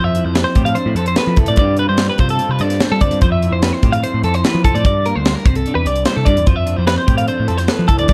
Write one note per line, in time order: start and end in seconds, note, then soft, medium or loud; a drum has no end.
0.00 0.22 F2 medium
0.00 1.58 F3 medium
0.04 0.25 E5 medium
0.15 0.76 E4 medium
0.15 closed hi-hat medium
0.25 0.44 F2 medium
0.25 0.34 C5 medium
0.34 1.59 C4 medium
0.34 0.44 B4 medium
0.34 snare loud
0.34 closed hi-hat medium
0.44 0.65 C5 medium
0.55 0.75 A2 medium
0.55 0.65 G4 medium
0.55 kick medium
0.55 closed hi-hat medium
0.65 0.96 A4 medium
0.65 0.76 F5 medium
0.65 closed hi-hat medium
0.75 0.87 D4 medium
0.75 0.96 C5 medium
0.75 closed hi-hat medium
0.86 0.94 A2 medium
0.86 1.38 E4 medium
0.95 1.15 F2 medium
0.95 1.07 A4 medium
0.95 1.18 C5 medium
0.95 closed hi-hat medium
1.06 1.17 C5 medium
1.06 closed hi-hat medium
1.16 1.56 A4 medium
1.16 1.39 B4 medium
1.16 snare loud
1.16 closed hi-hat medium
1.27 1.36 F3 medium
1.36 1.47 C2 medium
1.36 1.56 E4 medium
1.36 1.48 A4 medium
1.36 kick medium
1.36 closed hi-hat medium
1.46 1.56 A2 medium
1.46 1.58 D5 medium
1.46 closed hi-hat medium
1.56 1.85 G2 medium
1.56 3.21 G2 medium
1.56 1.98 G3 medium
1.56 1.79 C4 medium
1.56 2.19 F4 medium
1.56 1.79 D5 medium
1.56 kick loud
1.56 closed hi-hat medium
1.61 2.61 G4 medium
1.77 2.39 C4 medium
1.77 1.88 B4 medium
1.77 closed hi-hat medium
1.89 2.08 G2 medium
1.89 2.09 C5 medium
1.98 3.19 G3 medium
1.98 snare loud
1.98 closed hi-hat medium
2.09 2.20 B4 medium
2.18 2.38 C3 medium
2.18 2.81 F4 medium
2.18 2.30 C5 medium
2.18 kick medium
2.18 closed hi-hat medium
2.29 2.51 A4 medium
2.29 closed hi-hat medium
2.39 3.01 C4 medium
2.39 closed hi-hat medium
2.49 2.59 C3 medium
2.49 2.61 B4 medium
2.59 2.79 G2 loud
2.59 3.20 A4 medium
2.59 2.81 D5 medium
2.59 closed hi-hat medium
2.70 snare soft
2.70 closed hi-hat medium
2.80 2.92 D4 medium
2.80 2.91 C5 medium
2.80 snare loud
2.80 closed hi-hat medium
2.92 3.01 G3 medium
2.92 3.22 F4 soft
2.92 3.02 A4 medium
3.01 3.11 D2 medium
3.01 3.20 C4 medium
3.01 3.21 D5 medium
3.01 kick medium
3.01 closed hi-hat medium
3.11 3.21 G2 medium
3.11 closed hi-hat medium
3.21 3.50 F2 medium
3.21 4.64 F3 medium
3.21 3.31 C5 medium
3.21 kick loud
3.21 closed hi-hat medium
3.32 3.52 E5 medium
3.42 4.04 E4 medium
3.42 closed hi-hat medium
3.52 3.71 F2 medium
3.52 3.63 C5 medium
3.62 4.83 C4 medium
3.62 3.73 B4 medium
3.62 snare loud
3.62 closed hi-hat medium
3.73 3.93 C5 medium
3.83 4.02 A2 medium
3.83 3.94 G4 medium
3.83 kick medium
3.83 closed hi-hat medium
3.92 4.24 A4 medium
3.92 4.03 F5 medium
3.92 closed hi-hat medium
4.04 4.83 E4 medium
4.04 4.24 C5 medium
4.04 closed hi-hat medium
4.14 4.23 A2 medium
4.23 4.42 F2 medium
4.23 4.35 A4 medium
4.23 4.83 C5 medium
4.23 closed hi-hat medium
4.34 4.44 C5 medium
4.34 closed hi-hat medium
4.44 4.65 E3 medium
4.44 4.64 B4 medium
4.44 snare loud
4.44 closed hi-hat medium
4.55 4.64 F3 medium
4.64 4.74 C2 medium
4.64 4.85 F3 medium
4.64 4.75 A4 medium
4.64 kick medium
4.64 closed hi-hat medium
4.75 4.84 A2 medium
4.75 4.85 D5 medium
4.75 closed hi-hat medium
4.85 5.46 G2 medium
4.85 5.13 G2 medium
4.85 5.06 D5 medium
4.85 kick loud
4.85 closed hi-hat medium
5.06 5.46 A#3 medium
5.06 5.16 A#4 medium
5.06 closed hi-hat medium
5.16 5.34 D2 medium
5.16 5.35 C5 medium
5.25 5.43 G3 medium
5.25 snare loud
5.25 closed hi-hat medium
5.35 5.46 A#4 medium
5.45 5.64 C2 medium
5.45 6.47 C3 medium
5.45 5.56 C5 medium
5.45 kick loud
5.45 closed hi-hat medium
5.55 5.75 A4 medium
5.55 closed hi-hat medium
5.66 6.27 D4 medium
5.66 closed hi-hat medium
5.75 5.85 E2 medium
5.75 5.86 B4 medium
5.85 6.04 C2 medium
5.85 6.45 G3 medium
5.85 6.05 D5 medium
5.85 closed hi-hat medium
5.96 closed hi-hat medium
6.05 6.45 E4 medium
6.05 6.16 C5 medium
6.05 snare loud
6.05 closed hi-hat medium
6.17 6.26 C3 medium
6.17 6.27 A4 medium
6.25 6.36 G2 medium
6.25 6.45 D4 medium
6.25 6.47 D5 medium
6.25 kick medium
6.25 closed hi-hat medium
6.37 6.46 E2 medium
6.37 closed hi-hat medium
6.46 6.74 F2 medium
6.46 8.13 F3 medium
6.46 6.56 C5 medium
6.46 kick loud
6.46 closed hi-hat medium
6.56 6.77 E5 medium
6.66 6.76 D4 medium
6.66 closed hi-hat medium
6.76 6.96 F2 medium
6.76 7.27 E4 soft
6.76 6.87 C5 medium
6.86 8.13 C4 medium
6.86 6.97 B4 medium
6.86 snare loud
6.86 closed hi-hat medium
6.98 7.17 C5 medium
7.07 7.26 A2 medium
7.07 7.18 G4 medium
7.07 kick medium
7.07 closed hi-hat medium
7.18 7.48 A4 medium
7.18 7.28 F5 medium
7.18 closed hi-hat medium
7.27 7.38 D4 medium
7.27 7.48 C5 medium
7.27 closed hi-hat medium
7.38 7.48 A2 medium
7.38 7.87 E4 medium
7.48 7.67 F2 medium
7.48 7.58 A4 medium
7.48 7.68 C5 medium
7.48 closed hi-hat medium
7.58 7.68 C5 medium
7.58 snare soft
7.58 closed hi-hat medium
7.68 8.06 A4 medium
7.68 7.87 B4 medium
7.68 snare loud
7.68 closed hi-hat medium
7.79 7.88 F3 medium
7.88 7.98 C2 medium
7.88 8.06 E4 medium
7.88 7.98 A4 medium
7.88 kick medium
7.88 closed hi-hat medium
7.98 8.08 D2 medium
7.98 8.08 D5 medium
7.98 closed hi-hat medium
8.08 8.13 G2 medium
8.08 8.13 D5 medium
8.08 kick loud
8.08 closed hi-hat medium